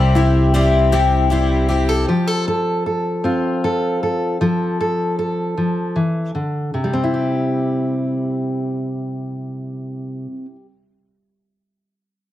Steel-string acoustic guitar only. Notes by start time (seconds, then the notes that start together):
Already playing: C3 C4 G4
0.15 E4
0.55 G4
0.92 G3 C4
1.31 E4
1.69 G4
1.89 A4
2.08 F3 G4
2.27 A4
2.48 A4
2.86 A4
3.24 C4 F4
3.64 A4
4.03 A4
4.41 F3 A4
4.81 A4
5.19 A4
5.57 F3
5.96 E3
6.35 D3
6.74 C3
6.84 G3
6.93 C4
7.04 E4
7.14 G4